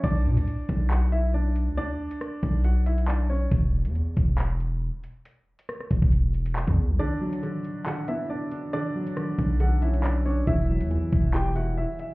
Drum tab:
CC |x---------------|----------------|----------------|----------------|
HH |x--xx-x-x-x---x-|x--xx-x-x-xx--o-|x--xx-x-x-x---x-|x--xx-x-x-xx----|
CP |--------x-------|------------x---|--------x-------|------------x---|
SD |----------------|----r-----------|----------------|----rr----------|
BD |o-----o---------|------o---------|o-----o---------|------oo-----o--|

CC |----------------|----------------|----------------|
HH |x--xx-x-x-x---x-|x--xx-x-x-xx--o-|x--xx-x-x-x---x-|
CP |--------x-------|------------x---|--------x-------|
SD |----------------|----r-----------|----------------|
BD |----------------|------o---------|o-----o---------|